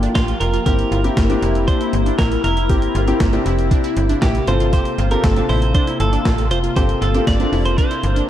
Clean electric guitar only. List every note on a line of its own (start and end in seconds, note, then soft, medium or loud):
0.00 0.14 F4 medium
0.15 0.40 F4 medium
0.40 0.65 A#4 loud
0.66 1.67 A#4 loud
1.68 2.18 C5 loud
2.19 2.43 A#4 loud
2.44 3.42 A#4 medium
4.22 4.46 G4 medium
4.48 4.72 C5 medium
4.73 5.11 C5 loud
5.11 5.24 A#4 medium
5.24 5.49 A4 medium
5.49 5.73 C5 medium
5.75 5.98 C5 loud
6.00 6.47 A4 loud
6.51 6.58 C5 loud
6.77 7.02 C5 loud
7.02 7.27 A4 medium
7.27 7.65 D5 loud
7.66 7.77 C5 loud
7.78 8.29 C5 loud